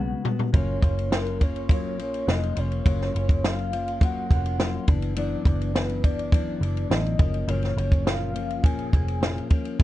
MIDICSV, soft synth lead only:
0, 0, Header, 1, 2, 480
1, 0, Start_track
1, 0, Key_signature, 6, "major"
1, 0, Tempo, 578592
1, 451, Time_signature, 4, 2, 24, 8
1, 8156, End_track
2, 0, Start_track
2, 0, Title_t, "Soft synth lead"
2, 0, Program_c, 0, 80
2, 0, Note_on_c, 0, 78, 108
2, 216, Note_off_c, 0, 78, 0
2, 463, Note_on_c, 0, 73, 88
2, 946, Note_on_c, 0, 70, 83
2, 959, Note_off_c, 0, 73, 0
2, 1179, Note_off_c, 0, 70, 0
2, 1186, Note_on_c, 0, 73, 88
2, 1402, Note_off_c, 0, 73, 0
2, 1433, Note_on_c, 0, 73, 92
2, 1646, Note_off_c, 0, 73, 0
2, 1672, Note_on_c, 0, 73, 96
2, 1909, Note_on_c, 0, 75, 108
2, 1921, Note_off_c, 0, 73, 0
2, 2151, Note_on_c, 0, 73, 104
2, 2163, Note_off_c, 0, 75, 0
2, 2878, Note_on_c, 0, 77, 100
2, 2891, Note_off_c, 0, 73, 0
2, 3344, Note_off_c, 0, 77, 0
2, 3356, Note_on_c, 0, 78, 98
2, 4029, Note_off_c, 0, 78, 0
2, 4298, Note_on_c, 0, 74, 91
2, 4776, Note_on_c, 0, 71, 91
2, 4788, Note_off_c, 0, 74, 0
2, 5010, Note_off_c, 0, 71, 0
2, 5015, Note_on_c, 0, 74, 84
2, 5235, Note_off_c, 0, 74, 0
2, 5249, Note_on_c, 0, 74, 90
2, 5726, Note_on_c, 0, 75, 106
2, 5738, Note_off_c, 0, 74, 0
2, 6215, Note_on_c, 0, 73, 100
2, 6228, Note_off_c, 0, 75, 0
2, 6689, Note_on_c, 0, 77, 102
2, 6702, Note_off_c, 0, 73, 0
2, 7164, Note_off_c, 0, 77, 0
2, 7169, Note_on_c, 0, 80, 108
2, 7855, Note_off_c, 0, 80, 0
2, 8156, End_track
0, 0, End_of_file